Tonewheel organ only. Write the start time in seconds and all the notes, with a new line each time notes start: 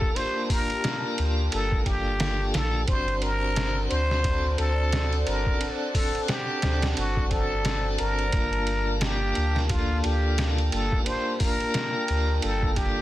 Already playing: A#3 D4 F4 A4
0.11 A#3 D4
0.18 F4 A#4
1.82 A#3 D4
1.89 F4 A4
2.85 C4 D4
2.91 F#4 C5
4.21 C4 D4
4.28 F#4 A4
5.57 C4 D4
5.64 A4 F#5
7.27 C4 D4
7.33 F#4 A4
8.30 A#3 D4
8.36 F4 A#4
9.67 A#3 D4
9.73 F4 A4
11.03 A#3 D4
11.09 F4 A#4
12.73 A#3 D4
12.79 F4 A4